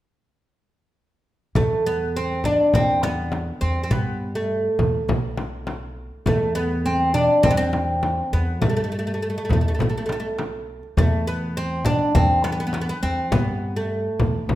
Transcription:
1.55 2.57 E2 medium
1.55 1.86 A3 medium
1.55 darbuka dum medium
1.55 frame drum medium
1.86 2.16 B3 medium
2.17 2.45 C4 medium
2.44 2.74 D4 medium
2.44 frame drum medium
2.74 3.49 E2 medium
2.74 3.05 C4 medium
2.74 frame drum medium
2.74 darbuka dum medium
3.03 3.64 B3 medium
3.03 darbuka tek medium
3.03 frame drum medium
3.32 darbuka tek medium
3.32 frame drum medium
3.61 3.91 E2 medium
3.61 3.82 C4 medium
3.84 3.91 C4 medium
3.91 4.67 G2 medium
3.91 4.35 B3 medium
3.91 frame drum medium
3.91 darbuka dum medium
4.35 5.49 A3 medium
4.51 darbuka ka soft
4.79 5.09 E2 medium
4.79 frame drum medium
4.79 darbuka dum medium
5.09 6.10 B1 medium
5.09 darbuka dum medium
5.09 frame drum medium
5.38 darbuka tek medium
5.38 frame drum medium
5.67 darbuka tek medium
5.67 frame drum medium
6.26 7.27 E2 medium
6.26 6.55 A3 medium
6.26 darbuka dum medium
6.26 frame drum medium
6.55 6.86 B3 medium
6.86 7.14 C4 medium
7.14 7.43 D4 medium
7.14 darbuka dum medium
7.43 8.20 E2 medium
7.43 7.51 C4 medium
7.43 darbuka dum medium
7.43 frame drum medium
7.50 7.57 B3 medium
7.57 8.33 C4 medium
7.73 darbuka tek medium
7.73 frame drum medium
8.03 darbuka tek medium
8.03 frame drum medium
8.33 8.62 E2 medium
8.33 8.61 B3 medium
8.61 9.37 G2 medium
8.61 8.68 A3 medium
8.61 darbuka dum medium
8.61 frame drum medium
8.70 8.75 A3 soft
8.77 8.83 A3 medium
8.84 8.91 A3 soft
8.92 8.98 A3 soft
8.99 9.06 A3 soft
9.05 9.13 A3 soft
9.05 darbuka ka soft
9.14 9.21 A3 soft
9.21 9.29 A3 soft
9.21 darbuka ka soft
9.30 9.37 A3 soft
9.35 9.44 A3 soft
9.35 darbuka ka soft
9.45 9.52 A3 soft
9.49 9.80 E2 medium
9.49 9.59 A3 soft
9.49 darbuka dum medium
9.49 frame drum medium
9.61 9.67 A3 soft
9.68 9.73 A3 soft
9.75 9.80 A3 soft
9.79 10.80 B1 medium
9.79 9.88 A3 soft
9.79 darbuka dum medium
9.79 frame drum medium
9.89 9.96 A3 soft
9.98 10.04 A3 medium
10.06 10.11 A3 soft
10.06 darbuka tek medium
10.06 frame drum medium
10.12 10.19 A3 medium
10.20 10.26 A3 soft
10.39 darbuka tek medium
10.39 frame drum medium
10.83 darbuka ka soft
10.97 11.98 E2 medium
10.97 11.27 A3 medium
10.97 frame drum medium
10.97 darbuka dum medium
11.27 11.57 B3 medium
11.57 11.85 C4 medium
11.85 12.14 D4 medium
11.85 frame drum medium
11.85 darbuka dum medium
12.15 12.90 E2 medium
12.15 12.45 C4 medium
12.15 frame drum medium
12.15 darbuka dum medium
12.44 12.51 B3 medium
12.44 darbuka tek medium
12.44 frame drum medium
12.52 12.59 B3 medium
12.60 12.66 B3 medium
12.67 12.73 B3 medium
12.73 12.80 B3 medium
12.73 darbuka tek medium
12.73 frame drum medium
12.81 12.88 B3 medium
12.89 12.96 B3 medium
13.03 13.32 E2 medium
13.03 13.33 C4 medium
13.32 14.07 G2 medium
13.32 13.76 B3 medium
13.32 frame drum medium
13.32 darbuka dum medium
13.76 14.55 A3 medium
13.91 darbuka ka soft
14.19 14.49 E2 medium
14.19 frame drum medium
14.19 darbuka dum medium
14.49 14.55 B1 medium
14.49 frame drum medium
14.49 darbuka dum medium

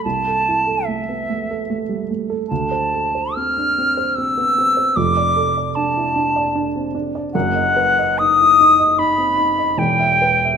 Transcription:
0.04 2.47 C2 medium
0.04 0.86 A5 medium
0.27 0.59 A4 soft
0.48 0.80 E4 soft
0.67 1.00 A4 soft
0.85 1.20 A3 soft
0.85 2.08 E5 medium
1.09 1.29 B3 soft
1.30 1.61 A3 soft
1.51 1.82 A4 soft
1.70 2.02 A3 soft
1.89 2.09 G3 soft
2.10 2.42 A3 soft
2.30 2.50 A4 medium
2.48 4.92 D2 medium
2.48 3.36 A5 medium
2.71 3.06 C5 medium
2.94 3.28 A4 soft
3.15 3.49 C5 soft
3.35 3.70 C4 soft
3.35 4.17 F6 loud
3.58 3.78 D4 soft
3.78 4.09 C4 medium
3.97 4.29 C5 medium
4.15 4.49 C4 medium
4.15 4.97 E6 loud
4.37 4.57 B3 soft
4.58 4.89 C4 soft
4.77 4.96 C5 medium
4.96 7.30 F1 medium
4.96 7.30 F2 medium
4.96 5.77 D6 loud
5.17 5.48 D5 medium
5.36 5.68 A4 medium
5.57 5.88 D5 medium
5.75 6.08 D4 medium
5.75 6.94 A5 medium
5.97 6.16 E4 medium
6.16 6.47 D4 medium
6.36 6.67 D5 medium
6.55 6.87 D4 medium
6.75 6.95 C4 soft
6.95 7.26 D4 medium
7.15 7.34 D5 medium
7.33 9.74 F#1 medium
7.33 9.74 F#2 medium
7.33 8.20 F#5 loud
7.55 7.90 D#5 medium
7.76 8.11 B4 medium
7.98 8.31 D#5 medium
8.18 8.52 D#4 medium
8.18 9.00 D#6 loud
8.41 8.60 E4 soft
8.61 8.91 D#4 medium
8.79 9.10 D#5 medium
8.98 9.30 D#4 medium
8.98 9.80 B5 loud
9.18 9.37 C4 soft
9.37 9.70 D#4 medium
9.58 9.78 D#5 medium
9.77 10.57 E1 medium
9.77 10.57 E2 medium
9.77 10.57 G5 loud
9.99 10.35 E5 medium
10.22 10.57 B4 medium
10.45 10.57 E5 medium

